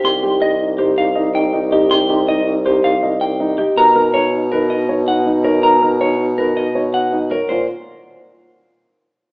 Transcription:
<<
  \new Staff \with { instrumentName = "Clean electric guitar" } { \time 5/4 \key bes \dorian \tempo 4 = 161 c'''8 r8 ees''8 r8 g'8 f''8 r8 g''8 r8 g'8 | c'''8 r8 ees''8 r8 g'8 f''8 r8 g''8 r8 g'8 | ais''8 r8 des''8 r8 ais'8 dis''8 r8 fis''8 r8 ais'8 | ais''8 r8 des''8 r8 ais'8 dis''8 r8 fis''8 r8 ais'8 |
c''8 r1 r8 | }
  \new Staff \with { instrumentName = "Grand piano" } { \time 5/4 \key bes \dorian g'8 g'8 ees''8 r8 c''8 r8 ees''8 r8 ees'8 ees''8 | g'8 g'8 ees''8 r8 c''8 r8 ees''8 r8 ees'8 ees''8 | ais'8 ais'8 des''8 r8 b'8 r8 des''8 r8 dis'8 des''8 | ais'8 ais'8 des''8 r8 b'8 r8 des''8 r8 dis'8 des''8 |
f'8 r1 r8 | }
  \new Staff \with { instrumentName = "French horn" } { \time 5/4 \key bes \dorian ees'8 ees'8 ees'8 ees'8 ees'8 ees'8 ees'8 ees'8 ees'8 ees'8 | ees'8 ees'8 ees'8 ees'8 ees'8 ees'8 ees'8 ees'8 ees'8 r8 | dis'8 dis'8 dis'8 dis'8 dis'8 dis'8 dis'8 dis'8 dis'8 dis'8 | dis'8 dis'8 dis'8 dis'8 dis'8 dis'8 dis'8 dis'8 dis'8 r8 |
r1 r4 | }
  \new Staff \with { instrumentName = "Bassoon" } { \clef bass \time 5/4 \key bes \dorian c,1~ c,4~ | c,1~ c,4 | b,1~ b,4~ | b,1~ b,4 |
bes,8 r1 r8 | }
>>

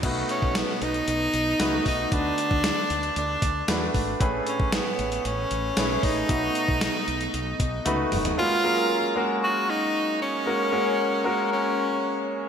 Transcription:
<<
  \new Staff \with { instrumentName = "Tenor saxophone" } { \time 4/4 \key b \mixolydian \tempo 4 = 115 r8 cis'8 b8 dis'2 dis'8 | d'2 d'4 r4 | r8 cis'8 b4 cis'4. dis'8~ | dis'2. r4 |
\key fis \major eis'4. r8 fis'8 dis'4 cis'8~ | cis'2 cis'4. r8 | }
  \new Staff \with { instrumentName = "Grand piano" } { \time 4/4 \key b \mixolydian <a dis' fis' b'>4 r2 <a dis' fis' b'>8 r8 | <a d' fis' b'>4 r2 <a d' fis' b'>8 r8 | <a cis' gis' b'>4 r2 <a cis' gis' b'>8 r8 | <a dis' fis' b'>4 r2 <a dis' fis' b'>8 r8 |
\key fis \major <gis ais cis' fis' ais'>8 <fis gis ais cis' ais'>8 r8 <gis ais cis' fis' ais'>4 r4. | <gis ais cis' fis' ais'>8 <gis ais cis' fis' ais'>8 r8 <gis ais cis' fis' ais'>4 r4. | }
  \new Staff \with { instrumentName = "Grand piano" } { \clef bass \time 4/4 \key b \mixolydian b,4. r2 r8 | d4. r2 r8 | a,4. r2 r8 | b,4. r2 r8 |
\key fis \major r1 | r1 | }
  \new Staff \with { instrumentName = "Fretless electric bass" } { \clef bass \time 4/4 \key b \mixolydian b,,8 r16 b,,8 r16 b,,8 b,,8 b,,8 cis,8 b,,8 | d,8 r16 d,8 r16 d,8 d,8 d,8 e,8 gis,,8 | a,,8 r16 a,,8 r16 a,,8 a,,8 a,,8 b,,8 a,,8 | b,,8 r16 b,,8 r16 b,,8 b,,8 b,,8 cis,8 e,,8 |
\key fis \major r1 | r1 | }
  \new DrumStaff \with { instrumentName = "Drums" } \drummode { \time 4/4 <cymc hh bd>8 hh16 bd16 <hh sn>8 hh16 hh16 hh8 hh8 <hh sn>8 <hho bd>8 | <hh bd>8 hh16 bd16 <hh sn>8 hh16 hh16 hh8 <hh bd>8 <hh sn>8 <hho bd>8 | <hh bd>8 hh16 bd16 <hh sn>8 hh16 hh16 hh8 hh8 <hh sn>8 <hho bd>8 | <hh bd>8 hh16 bd16 <hh sn>8 hh16 hh16 hh8 <hh bd>8 <hh tommh>8 <hho toml>16 <hh tomfh>16 |
r4 r4 r4 r4 | r4 r4 r4 r4 | }
>>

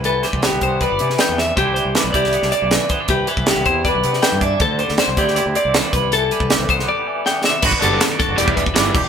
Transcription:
<<
  \new Staff \with { instrumentName = "Clean electric guitar" } { \time 4/4 \key a \dorian \tempo 4 = 158 b'8 c''8 g'4 b'4. e''8 | c''8 c''4 d''4 d''4 c''8 | b'8 c''8 g'4 b'4. d''8 | c''8 c''4 d''8 d''8 d''8 c''8 b'8 |
a'2.~ a'8 r8 | r1 | }
  \new Staff \with { instrumentName = "Clean electric guitar" } { \time 4/4 \key a \dorian a'8 b'4 c''8 d''4 g''8 e''8 | g'4 b'8 g'4 d''8 b'4 | g'8 b'4 c''8 d''4 g''8 e''8 | a'4 c''8 g'4 d''8 b'4 |
a'8 b'4 c''8 d''4 g''8 e''8 | b'8 a'4 a'8 d''8 b'4 r8 | }
  \new Staff \with { instrumentName = "Clean electric guitar" } { \time 4/4 \key a \dorian << { e'8 g8 b8 b8 g4 b4 | <e g d' e'>4 g8 e'8 b16 d'16 g4 b16 d'16 | r4 b8 e'8 d'8 b4 d'8 | r4 c'8 e'8 e'8 c'4 r8 |
r8 g8 g'8 b8 g4 b4 | <d b d' fis'>8 b8 b16 d'16 fis'8 g'8 g8 d'8 g'8 | } \\ { <e g>2~ <e g>8 e4 c8 | c8 e2~ e8 e4 | c8 e2~ e8 e4 | d8 g2~ g8 g8 c8 |
e2~ e8 e4 c8 | g,2 e,4. e,8 | } >> }
  \new Staff \with { instrumentName = "Overdriven electric guitar" } { \time 4/4 \key a \dorian r1 | r1 | r1 | r1 |
r1 | r8 <d g b d'>8 r4 <e g b e'>8 r8 <e g b e'>8 r8 | }
  \new Staff \with { instrumentName = "Fingered electric bass" } { \clef bass \time 4/4 \key a \dorian c,8. c,8 c,16 c,8. g,,16 c8 r16 e,8. | c,8. c,16 r16 b,,16 c,8. c,16 r16 b,,8 r8. | c,8 r16 c,8 c,16 e,8. b,,16 c8 r16 g,8. | d,8. d,16 r16 c,16 d,8. d,16 r16 c,8 r16 c,8~ |
c,8. c,8 c,16 c,8 r2 | g,,16 r16 fis,,8 r8. fis,,16 e,,8 e,,8 g,,8 e,,16 r16 | }
  \new DrumStaff \with { instrumentName = "Drums" } \drummode { \time 4/4 hh8 <hh sn>16 bd16 <hh sn>8 <hh bd>8 <hh bd>8 hh16 sn16 <hh sn>8 sn8 | <hh bd>8 hh8 <hh sn>8 <hh bd>16 sn16 hh16 sn16 hh8 <hh sn>8 <hh bd>8 | <hh bd>8 hh16 bd16 <hh sn>8 <hh bd>8 <hh bd>8 hh16 sn16 <hh sn>8 <hh bd>8 | <hh bd>8 hh16 sn16 <hh sn>8 <hh bd>16 sn16 hh8 hh8 <hh sn>8 <hh bd>8 |
hh8 hh16 bd16 <hh sn>8 <hh bd>16 sn16 r4 sn8 sn8 | <cymc bd>16 bd16 hh8 <hh sn>8 <hh bd>8 hh16 bd16 <hh bd>16 bd16 <hh sn>8 <cymc bd>8 | }
>>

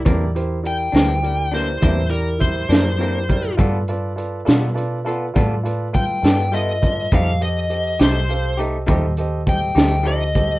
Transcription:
<<
  \new Staff \with { instrumentName = "Lead electric guitar" } { \time 12/8 \key g \dorian \tempo 4. = 68 r4 g''4. c''4 bes'8 c''2 | r1 g''4 ees''4 | f''8 ees''4 c''4 r4. g''4 ees''4 | }
  \new Staff \with { instrumentName = "Grand piano" } { \time 12/8 \key g \dorian <e' g' bes' d''>8 <e' g' bes' c''>8 <e' g' bes' d''>8 <e' g' bes' c''>8 <e' g' bes' d''>8 <e' g' bes' d''>8 <e' g' bes' e''>8 <e' g' bes' d''>8 <e' g' bes' e''>8 <e' g' bes' d''>8 <e' g' bes' d''>8 <e' g' bes' d''>8 | <f' a' b' d''>8 <f' a' b' d''>8 <f' a' b' d''>8 <f' a' b' d''>8 <f' a' b' d''>8 <f' a' b' d''>8 <f' a' b' d''>8 <f' a' b' d''>8 <f' a' b' f''>8 <f' a' b' d''>8 <f' a' b' e''>8 <f' a' b' d''>8 | <g' a' c'' ees''>8 <g' a' c'' ees''>8 <g' a' c'' ees''>8 <g' a' c'' ees''>8 <g' a' c'' f''>8 <g' a' c'' ees''>8 <g' a' c'' ees''>8 <g' a' c'' ees''>8 <g' a' c'' ees''>8 <g' a' c'' ees''>8 <g' a' c'' ees''>8 <g' a' c'' ees''>8 | }
  \new Staff \with { instrumentName = "Clean electric guitar" } { \time 12/8 \key g \dorian <c e bes d'>8 r4 <e bes d'>8 r8 <e bes d'>8 <c e bes d'>8 r4 <e bes d'>8 <c e bes d'>8 r8 | <g b f' a'>8 r4 <b f' a'>8 r8 <b f' a'>8 <g b f' a'>8 r4 <b f' a'>8 <g b f' a'>8 r8 | <f a ees' g'>8 r4 <a ees' g'>8 r8 <a ees' g'>8 <f a ees' g'>8 r4 <a ees' g'>8 <f a ees' g'>8 r8 | }
  \new Staff \with { instrumentName = "Fingered electric bass" } { \clef bass \time 12/8 \key g \dorian e,4. d,4. e,4. fis,4. | g,4. b,4. a,4. g,4. | f,4. c,4. ees,4. d,4. | }
  \new DrumStaff \with { instrumentName = "Drums" } \drummode { \time 12/8 <hh bd>8 hh8 hh8 <hh sn>8 hh8 <hh sn>8 <hh bd>8 hh8 <hh bd>8 <hh sn>8 hh8 <hh bd>8 | <hh bd>8 hh8 hh8 <hh sn>8 hh8 hh8 <hh bd>8 hh8 <hh bd>8 <hh sn>8 hh8 <hh bd>8 | <hh bd>8 hh8 hh8 <hh sn>8 hh8 hh8 <hh bd>8 hh8 <hh bd>8 <hh sn>8 hh8 <hh bd>8 | }
>>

